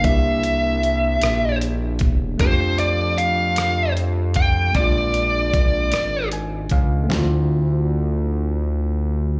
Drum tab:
HH |xxxxxx|xxxxxx|xxxxxx|------|
SD |---r--|---r--|---r--|o-----|
FT |------|------|------|o-----|
BD |o----o|o----o|o-o--o|------|